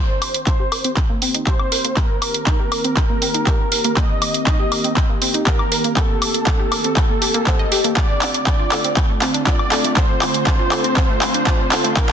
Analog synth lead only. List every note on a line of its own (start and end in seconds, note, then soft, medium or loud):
0.00 0.42 C5 medium
0.47 0.92 C5 medium
1.47 1.98 C5 medium
1.97 3.98 A#4 loud
3.97 4.42 D#5 loud
4.47 4.92 D#5 medium
5.47 5.92 A#4 medium
5.97 7.87 A4 loud
7.97 8.42 D5 loud
8.47 8.92 D5 medium
9.47 9.92 D5 medium
9.97 11.87 C5 loud
11.97 12.12 A#4 loud